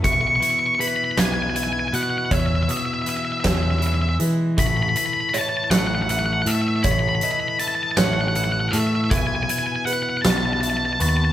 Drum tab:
HH |xxxxxx|xxxxxx|xxxxxx|xxxxxx|
SD |---o--|---o--|---o--|---o--|
BD |o-----|o--o--|o-----|o-----|

HH |xxxxxx|
SD |---o--|
BD |o-----|